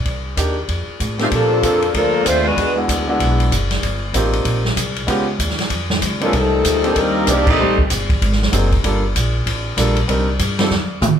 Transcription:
0.05 upright bass C2, kick, ride
0.37 upright bass D#2, grand piano A#3 D4 D#4 G4, kick, hi-hat pedal, ride
0.68 upright bass F2, kick, ride
0.87 muted upright bass stroke
1.00 upright bass A2, kick, hi-hat pedal, ride
1.19 trombone section A2 C3 F3, grand piano A#2 A3 C4 D4 G4, saxophone section C4 D#4, snare, ride
1.23 saxophone section A3 F4
1.31 upright bass A#2, trombone section D3 F3 A4, saxophone section F3 A#3 D4 A4, kick, ride
1.62 upright bass F2, grand piano A#3 C4 D4 F4 A4, kick, hi-hat pedal, ride
1.82 ride
1.94 upright bass D2, trombone section D3 F3 A#3, saxophone section F3 D4 A4 A#4, kick, ride
2.25 upright bass D#2, saxophone section A3 D4 F4 C5, trombone section C4, kick, hi-hat pedal, ride
2.44 trombone section D3 G#3 B3, saxophone section G#3 D4 F#4 B4
2.57 upright bass E2, kick, ride
2.76 grand piano G#3 B3 D4 E4 F#4
2.88 upright bass D2, kick, hi-hat pedal, ride
3.08 grand piano G#3 B3 D4 E4 F#4
3.19 upright bass B1, kick, ride
3.40 ride
3.51 upright bass F#1, kick, hi-hat pedal, ride
3.71 snare, ride
3.82 upright bass G1, kick, ride
4.13 upright bass A1, grand piano A#3 C4 D#4 F4 G4, kick, hi-hat pedal, ride
4.33 ride
4.45 upright bass A#1, kick, ride
4.65 snare
4.76 upright bass C2, kick, hi-hat pedal, ride
4.96 ride
5.07 upright bass C#2, grand piano G#3 B3 C#4 F4 G4, kick, ride
5.39 upright bass D#2, kick, hi-hat pedal, ride
5.50 snare
5.59 snare, ride
5.70 upright bass F2, kick, ride
5.90 snare
6.02 upright bass C#2, kick, hi-hat pedal, ride
6.21 trombone section G#2 B2 F3, grand piano A#3 C4 D4 D#4 A4, saxophone section B3 C#4 F4, ride
6.25 saxophone section G#3
6.33 upright bass C2, trombone section A#2 D#3 A3, saxophone section G3 C4 D#4 A4, kick, ride
6.64 upright bass D2, kick, hi-hat pedal, ride
6.83 grand piano A#3 C4 D4 D#4 G4, ride
6.93 upright bass D#2, trombone section D#3 G3 A#3, saxophone section A4, kick, ride
6.99 saxophone section G3 C4 D#4 A#4
7.27 upright bass C2, grand piano A#3 C4 D4 D#4 G4, trombone section D4, kick, hi-hat pedal, ride
7.31 saxophone section A#3 D#4 G4 D5
7.47 trombone section G3 C4 D#4, saxophone section C4 G4 A4 D#5, kick, crash
7.58 upright bass A1, grand piano G3 A3 C4 D#4 G4
7.78 kick
7.90 upright bass G1, kick, hi-hat pedal, ride
8.10 kick, ride
8.22 upright bass G#1, kick, ride
8.32 snare
8.42 snare
8.52 upright bass F#1, grand piano F#3 A#3 C4 D#4 G#4, kick, hi-hat pedal, ride
8.72 kick, ride
8.84 upright bass G1, grand piano G3 A#3 D4 F4 A4, kick, ride
9.15 upright bass A#1, kick, hi-hat pedal, ride
9.46 upright bass A1, kick, ride
9.77 upright bass A#1, grand piano G3 A#3 D4 F4 A4, kick, hi-hat pedal, ride
9.97 ride
10.08 upright bass C2, grand piano G3 C4 D4 D#4 A#4, kick, ride
10.39 upright bass G2, kick, hi-hat pedal, ride
10.59 grand piano G3 C4 D#4 F4 A4, snare, ride
10.70 upright bass F2, snare
11.01 upright bass A2, hi-hat pedal, mid tom

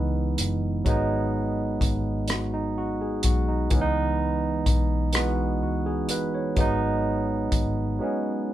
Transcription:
Already playing: fingered electric bass C#2, tine electric piano E3 G#3 B3 D#4 E4
0.38 fingered electric bass F#1, closed hi-hat
0.85 fingered electric bass G#1, tine electric piano F#3 G#3 B3, kick, closed hi-hat
0.89 tine electric piano D#4
1.81 fingered electric bass G#1, kick, closed hi-hat
2.28 tine electric piano F#4, cross-stick, closed hi-hat
2.54 tine electric piano D#4
2.78 tine electric piano F#4
3.01 tine electric piano G#4
3.23 fingered electric bass B1, tine electric piano F#4, kick, closed hi-hat
3.48 tine electric piano D#4
3.70 fingered electric bass C#2, tine electric piano E3 G#3 B3, kick, closed hi-hat
3.75 tine electric piano C#4
3.81 tine electric piano D#4
4.66 fingered electric bass B1, kick, closed hi-hat
5.13 tine electric piano E3 G#3 B3, cross-stick, closed hi-hat
5.18 tine electric piano F#4
5.62 fingered electric bass C#2, tine electric piano F#4
5.86 tine electric piano G#4
6.09 fingered electric bass F#1, tine electric piano B4, closed hi-hat
6.34 tine electric piano C#5
6.56 fingered electric bass G#1, tine electric piano F#3 G#3 B3, kick, closed hi-hat
6.60 tine electric piano D#4
7.52 fingered electric bass G#1, kick, closed hi-hat
7.99 tine electric piano F#3 G#3 B3
8.03 tine electric piano C#4

